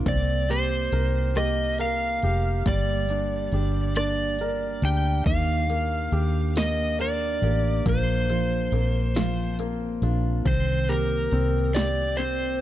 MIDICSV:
0, 0, Header, 1, 6, 480
1, 0, Start_track
1, 0, Tempo, 865801
1, 32, Time_signature, 6, 3, 24, 8
1, 6992, End_track
2, 0, Start_track
2, 0, Title_t, "Electric slide guitar"
2, 0, Program_c, 0, 29
2, 46, Note_on_c, 0, 74, 78
2, 280, Note_on_c, 0, 72, 72
2, 286, Note_off_c, 0, 74, 0
2, 761, Note_on_c, 0, 75, 73
2, 771, Note_off_c, 0, 72, 0
2, 1000, Note_off_c, 0, 75, 0
2, 1002, Note_on_c, 0, 77, 84
2, 1489, Note_on_c, 0, 74, 80
2, 1493, Note_off_c, 0, 77, 0
2, 2193, Note_off_c, 0, 74, 0
2, 2200, Note_on_c, 0, 74, 78
2, 2688, Note_on_c, 0, 79, 74
2, 2693, Note_off_c, 0, 74, 0
2, 2917, Note_off_c, 0, 79, 0
2, 2919, Note_on_c, 0, 77, 90
2, 3646, Note_off_c, 0, 77, 0
2, 3649, Note_on_c, 0, 75, 74
2, 3867, Note_off_c, 0, 75, 0
2, 3888, Note_on_c, 0, 74, 75
2, 4373, Note_off_c, 0, 74, 0
2, 4375, Note_on_c, 0, 72, 73
2, 5304, Note_off_c, 0, 72, 0
2, 5807, Note_on_c, 0, 72, 92
2, 6038, Note_on_c, 0, 70, 76
2, 6049, Note_off_c, 0, 72, 0
2, 6511, Note_on_c, 0, 74, 93
2, 6532, Note_off_c, 0, 70, 0
2, 6747, Note_on_c, 0, 72, 81
2, 6761, Note_off_c, 0, 74, 0
2, 6992, Note_off_c, 0, 72, 0
2, 6992, End_track
3, 0, Start_track
3, 0, Title_t, "Grand piano"
3, 0, Program_c, 1, 0
3, 0, Control_c, 1, 64, 127
3, 36, Note_on_c, 1, 60, 50
3, 40, Control_c, 1, 64, 0
3, 147, Control_c, 1, 64, 127
3, 275, Note_on_c, 1, 67, 43
3, 515, Note_on_c, 1, 70, 42
3, 745, Note_off_c, 1, 67, 0
3, 753, Note_on_c, 1, 67, 44
3, 986, Note_off_c, 1, 70, 0
3, 995, Note_on_c, 1, 70, 46
3, 1232, Note_off_c, 1, 67, 0
3, 1240, Note_on_c, 1, 67, 38
3, 1454, Note_off_c, 1, 60, 0
3, 1461, Note_off_c, 1, 70, 0
3, 1470, Note_off_c, 1, 67, 0
3, 1481, Note_on_c, 1, 55, 53
3, 1483, Control_c, 1, 64, 0
3, 1581, Control_c, 1, 64, 127
3, 1718, Note_on_c, 1, 62, 42
3, 1961, Note_on_c, 1, 67, 40
3, 2196, Note_off_c, 1, 62, 0
3, 2204, Note_on_c, 1, 62, 44
3, 2445, Note_on_c, 1, 70, 45
3, 2671, Note_off_c, 1, 62, 0
3, 2680, Note_on_c, 1, 62, 41
3, 2897, Note_off_c, 1, 55, 0
3, 2897, Note_off_c, 1, 67, 0
3, 2907, Note_off_c, 1, 70, 0
3, 2911, Note_off_c, 1, 62, 0
3, 2920, Note_on_c, 1, 51, 51
3, 2925, Control_c, 1, 64, 0
3, 3022, Control_c, 1, 64, 127
3, 3159, Note_on_c, 1, 58, 41
3, 3396, Note_on_c, 1, 67, 44
3, 3631, Note_off_c, 1, 58, 0
3, 3639, Note_on_c, 1, 58, 45
3, 3879, Note_on_c, 1, 70, 43
3, 4116, Note_off_c, 1, 58, 0
3, 4124, Note_on_c, 1, 58, 40
3, 4335, Note_off_c, 1, 67, 0
3, 4337, Note_off_c, 1, 51, 0
3, 4344, Note_off_c, 1, 70, 0
3, 4352, Note_off_c, 1, 58, 0
3, 4361, Note_on_c, 1, 58, 56
3, 4365, Control_c, 1, 64, 0
3, 4456, Control_c, 1, 64, 127
3, 4600, Note_on_c, 1, 65, 44
3, 4833, Note_off_c, 1, 58, 0
3, 4841, Note_on_c, 1, 58, 43
3, 5071, Note_off_c, 1, 65, 0
3, 5079, Note_on_c, 1, 65, 47
3, 5312, Note_off_c, 1, 58, 0
3, 5320, Note_on_c, 1, 58, 49
3, 5553, Note_off_c, 1, 65, 0
3, 5561, Note_on_c, 1, 65, 40
3, 5784, Note_off_c, 1, 58, 0
3, 5792, Note_off_c, 1, 65, 0
3, 5794, Note_on_c, 1, 60, 56
3, 5805, Control_c, 1, 64, 0
3, 5908, Control_c, 1, 64, 127
3, 6038, Note_on_c, 1, 67, 46
3, 6273, Note_off_c, 1, 60, 0
3, 6281, Note_on_c, 1, 60, 50
3, 6507, Note_off_c, 1, 67, 0
3, 6515, Note_on_c, 1, 67, 48
3, 6749, Note_off_c, 1, 60, 0
3, 6757, Note_on_c, 1, 60, 52
3, 6988, Note_off_c, 1, 67, 0
3, 6992, Note_off_c, 1, 60, 0
3, 6992, End_track
4, 0, Start_track
4, 0, Title_t, "Steel-string acoustic guitar"
4, 0, Program_c, 2, 25
4, 0, Note_on_c, 2, 53, 47
4, 0, Note_on_c, 2, 62, 52
4, 38, Note_on_c, 2, 58, 66
4, 81, Note_off_c, 2, 53, 0
4, 81, Note_off_c, 2, 62, 0
4, 274, Note_off_c, 2, 58, 0
4, 276, Note_on_c, 2, 58, 48
4, 518, Note_on_c, 2, 63, 49
4, 754, Note_off_c, 2, 58, 0
4, 756, Note_on_c, 2, 58, 53
4, 991, Note_off_c, 2, 63, 0
4, 998, Note_on_c, 2, 63, 51
4, 1236, Note_on_c, 2, 67, 53
4, 1473, Note_off_c, 2, 58, 0
4, 1475, Note_on_c, 2, 58, 65
4, 1525, Note_off_c, 2, 63, 0
4, 1712, Note_off_c, 2, 58, 0
4, 1714, Note_on_c, 2, 58, 48
4, 1957, Note_on_c, 2, 62, 45
4, 2193, Note_off_c, 2, 58, 0
4, 2195, Note_on_c, 2, 58, 49
4, 2436, Note_off_c, 2, 62, 0
4, 2438, Note_on_c, 2, 62, 48
4, 2675, Note_off_c, 2, 67, 0
4, 2678, Note_on_c, 2, 67, 54
4, 2915, Note_off_c, 2, 58, 0
4, 2917, Note_on_c, 2, 58, 66
4, 3156, Note_off_c, 2, 58, 0
4, 3158, Note_on_c, 2, 58, 50
4, 3396, Note_off_c, 2, 62, 0
4, 3399, Note_on_c, 2, 62, 50
4, 3640, Note_off_c, 2, 58, 0
4, 3642, Note_on_c, 2, 58, 48
4, 3880, Note_off_c, 2, 62, 0
4, 3883, Note_on_c, 2, 62, 48
4, 4114, Note_off_c, 2, 67, 0
4, 4117, Note_on_c, 2, 67, 54
4, 4358, Note_on_c, 2, 53, 62
4, 4405, Note_off_c, 2, 67, 0
4, 4593, Note_off_c, 2, 53, 0
4, 4600, Note_on_c, 2, 53, 50
4, 4837, Note_off_c, 2, 58, 0
4, 4840, Note_on_c, 2, 60, 54
4, 4856, Note_off_c, 2, 62, 0
4, 5070, Note_off_c, 2, 53, 0
4, 5077, Note_on_c, 2, 53, 51
4, 5315, Note_off_c, 2, 60, 0
4, 5317, Note_on_c, 2, 60, 51
4, 5558, Note_on_c, 2, 62, 58
4, 5793, Note_off_c, 2, 53, 0
4, 5795, Note_on_c, 2, 51, 72
4, 5845, Note_off_c, 2, 62, 0
4, 6035, Note_off_c, 2, 60, 0
4, 6037, Note_on_c, 2, 58, 50
4, 6277, Note_on_c, 2, 60, 53
4, 6508, Note_off_c, 2, 58, 0
4, 6515, Note_on_c, 2, 58, 54
4, 6757, Note_off_c, 2, 60, 0
4, 6759, Note_on_c, 2, 60, 52
4, 6992, Note_off_c, 2, 51, 0
4, 6992, Note_off_c, 2, 58, 0
4, 6992, Note_off_c, 2, 60, 0
4, 6992, End_track
5, 0, Start_track
5, 0, Title_t, "Fingered electric bass"
5, 0, Program_c, 3, 33
5, 34, Note_on_c, 3, 36, 75
5, 492, Note_off_c, 3, 36, 0
5, 512, Note_on_c, 3, 36, 71
5, 1211, Note_off_c, 3, 36, 0
5, 1236, Note_on_c, 3, 29, 78
5, 1461, Note_off_c, 3, 29, 0
5, 1474, Note_on_c, 3, 31, 67
5, 1933, Note_off_c, 3, 31, 0
5, 1953, Note_on_c, 3, 31, 76
5, 2653, Note_off_c, 3, 31, 0
5, 2673, Note_on_c, 3, 38, 75
5, 2900, Note_off_c, 3, 38, 0
5, 2914, Note_on_c, 3, 39, 74
5, 3373, Note_off_c, 3, 39, 0
5, 3394, Note_on_c, 3, 39, 76
5, 4094, Note_off_c, 3, 39, 0
5, 4114, Note_on_c, 3, 33, 75
5, 4341, Note_off_c, 3, 33, 0
5, 4355, Note_on_c, 3, 34, 80
5, 4814, Note_off_c, 3, 34, 0
5, 4835, Note_on_c, 3, 34, 80
5, 5534, Note_off_c, 3, 34, 0
5, 5554, Note_on_c, 3, 34, 70
5, 5781, Note_off_c, 3, 34, 0
5, 5794, Note_on_c, 3, 36, 83
5, 6253, Note_off_c, 3, 36, 0
5, 6276, Note_on_c, 3, 36, 81
5, 6974, Note_off_c, 3, 36, 0
5, 6992, End_track
6, 0, Start_track
6, 0, Title_t, "Drums"
6, 34, Note_on_c, 9, 36, 94
6, 34, Note_on_c, 9, 42, 75
6, 89, Note_off_c, 9, 36, 0
6, 89, Note_off_c, 9, 42, 0
6, 276, Note_on_c, 9, 42, 42
6, 331, Note_off_c, 9, 42, 0
6, 512, Note_on_c, 9, 42, 43
6, 567, Note_off_c, 9, 42, 0
6, 750, Note_on_c, 9, 42, 58
6, 758, Note_on_c, 9, 37, 91
6, 806, Note_off_c, 9, 42, 0
6, 814, Note_off_c, 9, 37, 0
6, 989, Note_on_c, 9, 42, 45
6, 1045, Note_off_c, 9, 42, 0
6, 1233, Note_on_c, 9, 42, 44
6, 1289, Note_off_c, 9, 42, 0
6, 1474, Note_on_c, 9, 36, 89
6, 1474, Note_on_c, 9, 42, 76
6, 1529, Note_off_c, 9, 42, 0
6, 1530, Note_off_c, 9, 36, 0
6, 1712, Note_on_c, 9, 42, 41
6, 1768, Note_off_c, 9, 42, 0
6, 1950, Note_on_c, 9, 42, 46
6, 2005, Note_off_c, 9, 42, 0
6, 2192, Note_on_c, 9, 42, 57
6, 2200, Note_on_c, 9, 37, 88
6, 2248, Note_off_c, 9, 42, 0
6, 2256, Note_off_c, 9, 37, 0
6, 2432, Note_on_c, 9, 42, 43
6, 2487, Note_off_c, 9, 42, 0
6, 2674, Note_on_c, 9, 42, 42
6, 2729, Note_off_c, 9, 42, 0
6, 2916, Note_on_c, 9, 36, 100
6, 2916, Note_on_c, 9, 42, 78
6, 2971, Note_off_c, 9, 36, 0
6, 2971, Note_off_c, 9, 42, 0
6, 3158, Note_on_c, 9, 42, 39
6, 3213, Note_off_c, 9, 42, 0
6, 3395, Note_on_c, 9, 42, 45
6, 3450, Note_off_c, 9, 42, 0
6, 3635, Note_on_c, 9, 42, 60
6, 3643, Note_on_c, 9, 38, 91
6, 3691, Note_off_c, 9, 42, 0
6, 3698, Note_off_c, 9, 38, 0
6, 3876, Note_on_c, 9, 42, 47
6, 3931, Note_off_c, 9, 42, 0
6, 4117, Note_on_c, 9, 42, 44
6, 4173, Note_off_c, 9, 42, 0
6, 4357, Note_on_c, 9, 36, 95
6, 4357, Note_on_c, 9, 42, 72
6, 4412, Note_off_c, 9, 42, 0
6, 4413, Note_off_c, 9, 36, 0
6, 4599, Note_on_c, 9, 42, 40
6, 4655, Note_off_c, 9, 42, 0
6, 4835, Note_on_c, 9, 42, 49
6, 4890, Note_off_c, 9, 42, 0
6, 5073, Note_on_c, 9, 42, 64
6, 5080, Note_on_c, 9, 38, 93
6, 5128, Note_off_c, 9, 42, 0
6, 5136, Note_off_c, 9, 38, 0
6, 5316, Note_on_c, 9, 42, 43
6, 5371, Note_off_c, 9, 42, 0
6, 5556, Note_on_c, 9, 42, 45
6, 5611, Note_off_c, 9, 42, 0
6, 5797, Note_on_c, 9, 36, 103
6, 5797, Note_on_c, 9, 42, 77
6, 5852, Note_off_c, 9, 36, 0
6, 5853, Note_off_c, 9, 42, 0
6, 6038, Note_on_c, 9, 42, 39
6, 6093, Note_off_c, 9, 42, 0
6, 6273, Note_on_c, 9, 42, 46
6, 6328, Note_off_c, 9, 42, 0
6, 6513, Note_on_c, 9, 42, 62
6, 6521, Note_on_c, 9, 38, 95
6, 6568, Note_off_c, 9, 42, 0
6, 6576, Note_off_c, 9, 38, 0
6, 6755, Note_on_c, 9, 42, 45
6, 6810, Note_off_c, 9, 42, 0
6, 6992, End_track
0, 0, End_of_file